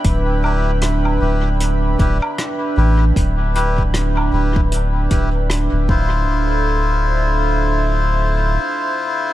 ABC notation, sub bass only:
X:1
M:4/4
L:1/16
Q:"Swing 16ths" 1/4=77
K:Ddor
V:1 name="Sub bass" clef=bass
D,,,6 D,,,4 D,,, z3 A,,,2 | D,,,6 D,,,4 D,,,3 D,,, D,,,2- | D,,,12 z4 |]